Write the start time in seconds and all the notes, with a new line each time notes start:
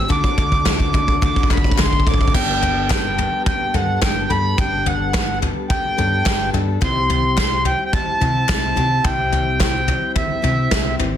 Already playing: E6
0.08 D2 D3 A3 D4 F#4 A4 F#5 D6, kick, floor tom
0.24 kick
0.38 D2, kick, floor tom
0.52 kick
0.65 D3 A3 D4 F#4, kick, snare, clap, floor tom
0.80 kick
0.93 A3 D4 F#4, kick, floor tom
1.08 kick
1.21 D3 A3 D4 F#4 D6, kick, floor tom
1.36 kick
1.43 kick
1.50 B5, kick, clap, floor tom
1.57 kick
1.64 kick
1.71 kick
1.78 D3 A3 D4 F#4 C6, kick, snare, clap, floor tom
1.86 kick
1.93 kick
2.00 kick
2.06 A1 D6, kick, floor tom
2.14 kick
2.21 kick
2.28 kick
2.34 G1 G3 B3 D4 G4 A4 B4 G5 A5, kick, floor tom, crash
2.62 floor tom
2.90 G3 B3 D4 A4 G5, kick, snare, clap
3.18 floor tom
3.46 G5, kick, floor tom
3.74 G2 B3 D4 A4 F#5, floor tom
4.02 G1 G3 B3 D4 A4 G5, kick, snare, clap
4.30 G2 B3 D4 A4 B5, floor tom
4.58 G1 G3 B3 D4 A4 G5, kick, floor tom
4.86 F#5, floor tom
5.13 G3 B3 D4 A4, kick, snare, clap
5.42 floor tom
5.70 G5, kick, floor tom
5.97 G2 B3 D4 A4, floor tom
6.26 G1 G3 D4 A4, kick, snare, clap
6.53 G2 B3 D4 A4, floor tom
6.81 C2 C3 G3 C4 E4 G4 C5 G5 C6, kick, floor tom
7.10 C6, floor tom
7.37 G3 E4 C6, kick, snare, clap
7.65 G5, floor tom
7.85 G5
7.93 A5, kick, floor tom
8.20 C3 C4 E4 G4, floor tom
8.48 C2 G3 C4 E4 G4, kick, snare, clap
8.76 C3 C4 E4 G4, floor tom
9.04 C2 C3 G3 C4 E4 G4 G5, kick, floor tom
9.32 floor tom
9.59 G3 C4 E4 G5, kick, snare, clap
9.88 floor tom
10.16 E5, kick, floor tom
10.42 C3 C4 E4 G4, floor tom
10.71 C2 G3 C4 E4 G4, kick, snare, clap
10.99 G#1 C4 E4 G4, floor tom